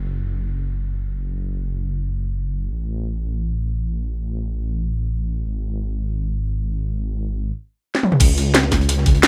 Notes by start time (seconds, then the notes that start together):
Already playing: F#1
2.72 A1
5.46 G#1
7.95 snare
8.03 mid tom
8.12 mid tom
8.20 C#2, kick, closed hi-hat, crash
8.38 closed hi-hat
8.54 snare, closed hi-hat
8.63 snare
8.71 kick, snare, closed hi-hat
8.81 closed hi-hat
8.89 closed hi-hat
8.98 snare
9.06 kick, closed hi-hat
9.15 closed hi-hat
9.23 E2, snare, closed hi-hat